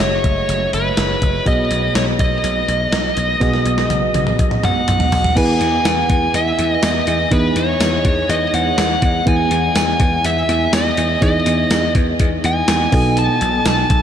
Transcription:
Already playing: A3 F#4 G#4 C#5
0.00 F#1 C#5, snare, closed hi-hat
0.24 F#1, kick, closed hi-hat
0.49 F#1, closed hi-hat
0.73 F#1 B4, closed hi-hat
0.97 F#1, snare, closed hi-hat
1.22 F#1, kick, closed hi-hat
1.45 B1 B2 B3 F#4 G#4 D#5, kick, closed hi-hat
1.71 B1, closed hi-hat
1.95 B1 C#5, snare, closed hi-hat
2.19 B1 D#5, kick, closed hi-hat
2.44 B1, closed hi-hat
2.68 B1, closed hi-hat
2.92 B1, snare, closed hi-hat
3.17 B1, closed hi-hat
3.40 B1 B2 B3 F#4 G#4 D#5, kick, snare, closed hi-hat
3.54 snare
3.66 B1, closed hi-hat
3.78 snare
3.90 B1, closed hi-hat, high tom
4.14 B1, closed hi-hat, high tom
4.27 mid tom
4.39 B1, kick, closed hi-hat
4.51 mid tom
4.63 B1 F#5, closed hi-hat, mid tom
4.88 B1, closed hi-hat, mid tom
5.00 floor tom
5.12 B1, floor tom, open hi-hat
5.24 floor tom
5.35 E2 E3 B3 E4 G#4 B4 G#5, kick, closed hi-hat, crash
5.61 E2, closed hi-hat
5.85 E2 G#5, snare, closed hi-hat, tambourine
6.10 E2, kick, closed hi-hat
6.34 E2 E5, closed hi-hat
6.59 E2, closed hi-hat
6.72 D#5
6.83 E2 D#5, snare, closed hi-hat, tambourine
7.07 E2, closed hi-hat
7.31 E2 E3 B3 D#4 E4 G#4 B4 D#5, kick, closed hi-hat
7.56 E2 C#5, closed hi-hat
7.80 E2, snare, closed hi-hat, tambourine
8.05 E2, kick, closed hi-hat
8.29 E2 D#5, closed hi-hat
8.54 E2 F#5, closed hi-hat
8.78 E2, snare, closed hi-hat, tambourine
9.02 E2, kick, closed hi-hat
9.26 E2 E3 B3 E4 G#4 G#5, kick, closed hi-hat
9.51 E2, closed hi-hat
9.75 E2 G#5, snare, closed hi-hat, tambourine
10.00 E2, kick, closed hi-hat
10.24 E2 E5, closed hi-hat
10.49 E2, closed hi-hat
10.73 E2 D#5, snare, closed hi-hat, tambourine
10.97 E2, closed hi-hat
11.21 E2 E3 B3 D#4 E4 G#4 D#5, kick, closed hi-hat
11.46 E2, closed hi-hat
11.70 E2, snare, closed hi-hat, tambourine
11.95 E2, kick, closed hi-hat
12.20 E2, kick, closed hi-hat
12.44 E2 G#5, closed hi-hat
12.68 E2, snare, closed hi-hat, tambourine
12.92 B1 B2 B3 D#4 F#4 A4 D#5, kick, open hi-hat
13.17 A5, closed hi-hat
13.41 B1, closed hi-hat
13.65 B1 A5, snare, closed hi-hat, tambourine
13.90 B1, kick, closed hi-hat

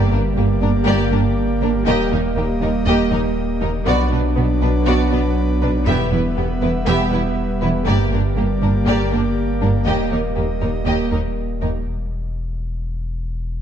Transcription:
Already playing: G1 G3 A#3 G4 D5
0.12 G1 G2 A#3 D4 A#4
0.36 G1 G2 A#3 G4
0.61 G1 G2 A#3 D4 A#4
0.86 G1 G2 A#3 G4 D5
1.11 G1 G2 A#3 D4 A#4
1.61 G1 G2 A#3 D4 A#4
1.86 D#1 D#2 G3 A#3 G4 D#5
2.11 D#2 A#3 D#4 A#4
2.36 D#2 A#3 G4
2.61 D#2 A#3 D#4 A#4
2.86 D#2 A#3 G4 D#5
3.11 D#2 A#3 D#4 A#4
3.62 D#2 A#3 D#4 A#4
3.86 B1 B2 F#3 B3 D4 F#4 B4 D5
4.11 B1 B2 B3 D4 B4
4.36 B1 B2 B3 F#4
4.61 B1 B2 B3 D4 B4
4.86 B1 B2 B3 F#4 D5
5.11 B1 B2 B3 D4 B4
5.62 B1 B2 B3 D4 B4
5.86 E1 E2 G3 B3 G4 E5
6.11 E1 E2 B3 E4 B4
6.36 E1 E2 B3 G4
6.61 E1 E2 B3 E4 B4
6.86 E1 E2 B3 G4 E5
7.12 E1 E2 B3 E4 B4
7.62 E1 E2 B3 E4 B4
7.87 G1 G2 A#3 G4 D5
8.12 G1 G2 A#3 D4 A#4
8.37 G1 G2 A#3 G4
8.62 G1 G2 A#3 D4 A#4
8.87 G1 G2 A#3 G4 D5
9.12 G1 G2 A#3 D4 A#4
9.61 G1 G2 A#3 D4 A#4
9.86 D#1 D#2 G3 A#3 G4 D#5
10.11 D#2 A#3 D#4 A#4
10.36 D#2 A#3 G4
10.61 D#2 A#3 D#4 A#4
10.86 D#2 A#3 G4 D#5
11.11 D#2 A#3 D#4 A#4
11.61 D#2 A#3 D#4 A#4
11.87 E1

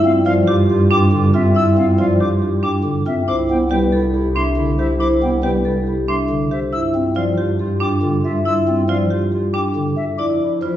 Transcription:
Already playing: G2 E4 E5
0.05 C4 F4 F5
0.26 F3 F4 D5 F5
0.47 F4 G4 D6
0.70 F4 G4
0.90 D4 F4 G5 D6
1.12 D3 F4
1.34 C4 F4 E5
1.55 E4 F4 E5 E6
1.77 C4 F4 F5
1.98 F3 F4 D5 F5
2.20 F4 G4 D6
2.41 F4 G4
2.63 D4 F4 G5 D6
2.84 D3 F4
3.06 C4 F4 E5
3.28 C2 E4 C5 D6
3.49 B3 E4 G5
3.71 G3 E4 G4 B4 G5
3.92 E4 A4
4.13 E4 G4
4.35 D4 E4 E5 C6
4.57 D3 E4
4.78 E4 G4 C5 E5
4.99 E4 C5 D6
5.21 B3 E4 G5
5.43 G3 E4 G4 B4 G5
5.65 E4 A4
5.86 E4 G4
6.08 D4 E4 E5 C6
6.30 D3 E4
6.51 G4 C5 E5
6.73 G2 E4 F4 E5 E6
6.94 C4 F4
7.15 F3 F4 D5 F5
7.37 F4 G4
7.59 F4 G4
7.80 D4 F4 G5 D6
8.03 D3 F4
8.24 F4 E5
8.45 E4 F4 E5 E6
8.68 C4 F4
8.88 F3 F4 D5 F5
9.10 F4 G4
9.32 F4 G4
9.53 D4 F4 G5 D6
9.75 D3 F4
9.96 E5
10.18 F2 E4 D5 D6
10.41 E4
10.61 F3 E4 F4 C5

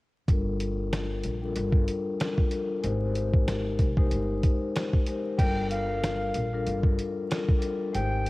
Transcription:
0.28 G1 G3 D4 F4 A4 A#4, kick, closed hi-hat
0.60 closed hi-hat
0.93 snare, closed hi-hat
1.24 A#1, closed hi-hat
1.42 G3 D4 F4 A4 A#4
1.56 G1, closed hi-hat
1.73 kick
1.88 closed hi-hat
2.18 G3 D4 F4 A4 A#4, snare, closed hi-hat
2.38 kick
2.48 G3 D4 F4 A4 A#4, closed hi-hat
2.82 G#1 G#3 D#4 G4 A#4 C5, closed hi-hat
3.15 closed hi-hat
3.34 kick
3.48 snare, closed hi-hat
3.79 C2, kick, closed hi-hat
3.97 G#3 D#4 G4 A#4 C5, kick
4.11 G1, closed hi-hat
4.43 kick, closed hi-hat
4.76 snare, closed hi-hat
4.93 kick
5.06 G#3 D#4 G4 A#4 C5, closed hi-hat
5.38 G1 G3 D4 F4 A4 A#4 G5, kick, closed hi-hat, crash
5.70 F5, closed hi-hat
6.04 snare, closed hi-hat
6.34 A#1, closed hi-hat
6.53 G3 D4 F4 A4 A#4
6.67 G1, closed hi-hat
6.83 kick
6.99 closed hi-hat
7.29 G3 D4 F4 A4 A#4, snare, closed hi-hat
7.49 kick
7.59 G3 D4 F4 A4 A#4, closed hi-hat
7.93 G#1 G#3 D#4 G4 A#4 C5 G5, closed hi-hat
8.26 closed hi-hat

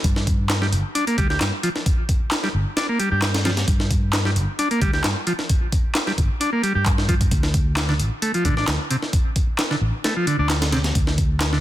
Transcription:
0.04 G2, kick, closed hi-hat
0.16 snare
0.27 kick, closed hi-hat
0.50 snare, clap, closed hi-hat
0.62 G3, snare
0.72 G1, closed hi-hat
0.95 D4, closed hi-hat
1.07 A#3, closed hi-hat
1.18 D2 G3, kick, closed hi-hat
1.30 G4, snare
1.41 G2, snare, clap, closed hi-hat
1.63 F3, closed hi-hat
1.76 snare
1.86 kick, closed hi-hat
2.09 kick, closed hi-hat
2.31 snare, clap, closed hi-hat
2.43 G3, snare
2.54 G1
2.77 D4, snare, closed hi-hat
2.89 A#3
2.99 G3, closed hi-hat
3.11 G2 G4
3.22 snare, clap, closed hi-hat
3.34 snare, closed hi-hat
3.45 F3, snare, closed hi-hat
3.57 snare, closed hi-hat
3.68 G2, kick, closed hi-hat
3.80 snare
3.91 kick, closed hi-hat
4.13 snare, clap, closed hi-hat
4.25 G3, snare
4.36 G1, closed hi-hat
4.59 D4, closed hi-hat
4.71 A#3, closed hi-hat
4.81 D2 G3, kick, closed hi-hat
4.93 G4, snare
5.04 G2, snare, clap, closed hi-hat
5.27 F3, closed hi-hat
5.39 snare
5.49 kick, closed hi-hat
5.72 kick, closed hi-hat
5.95 snare, clap, closed hi-hat
6.07 G3, snare
6.18 G1, kick, closed hi-hat
6.40 D4, closed hi-hat
6.53 A#3
6.63 G3, closed hi-hat
6.75 G2 G4
6.86 kick, clap, closed hi-hat
6.98 snare
7.09 F3, kick, closed hi-hat
7.21 kick, closed hi-hat
7.31 D2, kick, closed hi-hat
7.43 snare
7.54 kick, closed hi-hat
7.77 snare, clap, closed hi-hat
7.89 D3, snare
7.99 A1, closed hi-hat
8.22 A3, closed hi-hat
8.34 F3, closed hi-hat
8.45 A1 D3, kick, closed hi-hat
8.57 D4, snare
8.67 D2, snare, clap, closed hi-hat
8.90 C3, closed hi-hat
9.02 snare
9.13 kick, closed hi-hat
9.36 kick, closed hi-hat
9.59 snare, clap, closed hi-hat
9.71 D3, snare
9.81 A1
10.04 A3, snare, closed hi-hat
10.16 F3
10.27 D3, closed hi-hat
10.39 D2 D4
10.50 snare, clap, closed hi-hat
10.62 snare, closed hi-hat
10.72 C3, snare, closed hi-hat
10.84 snare, closed hi-hat
10.95 D2, kick, closed hi-hat
11.07 snare
11.18 kick, closed hi-hat
11.41 snare, clap, closed hi-hat
11.53 D3, snare

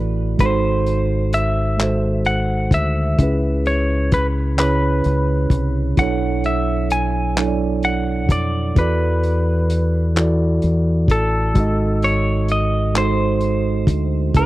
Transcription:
Already playing: A1 E3 E4 F#4 A4 D5
0.38 G#1 G#3 D#4 F#4 C5, kick, closed hi-hat
0.42 A4 C5
0.86 closed hi-hat
1.33 E5, closed hi-hat
1.77 D#3 G#3 F#4, clap, closed hi-hat
1.82 A4 C5
2.25 F#5, closed hi-hat
2.71 D2 E5, kick, closed hi-hat
3.17 C#2 C#3 C#4 E4, kick, closed hi-hat
3.21 G#4 B4
3.66 C#5, closed hi-hat
4.12 B4, kick, closed hi-hat
4.56 C#3 C#4 E4 B4, clap, closed hi-hat
4.61 G#4 C#5
5.04 C#2, closed hi-hat
5.50 C2, kick, closed hi-hat
5.96 B1 B2 F#3 D4 E4 F#5, kick, closed hi-hat
6.01 A4 C#5
6.44 E5, closed hi-hat
6.90 G#5, closed hi-hat
7.35 B2 F#3 D4 E4, clap, closed hi-hat
7.40 A4 C#5
7.47 D5
7.83 F#5, closed hi-hat
8.29 F2 D5, kick, closed hi-hat
8.75 E2 E3 E4 F#4 B4, kick, closed hi-hat
8.79 A4 D5
9.24 closed hi-hat
9.70 closed hi-hat
10.15 E3 E4 F#4, clap, closed hi-hat
10.19 A4 D5
10.62 E2, closed hi-hat
11.08 A1 A4, kick, closed hi-hat
11.54 G#1 G#3 D#4 F#4, kick, closed hi-hat
11.59 A4 D#5
12.02 C#5, closed hi-hat
12.48 D#5, closed hi-hat
12.94 G#3 D#4 F#4 C5, clap, closed hi-hat
12.99 A4 C5
13.41 closed hi-hat
13.87 D2, kick, closed hi-hat
14.33 C#2 C#3 C#4 E4 B4, kick, closed hi-hat
14.37 G#4 B4

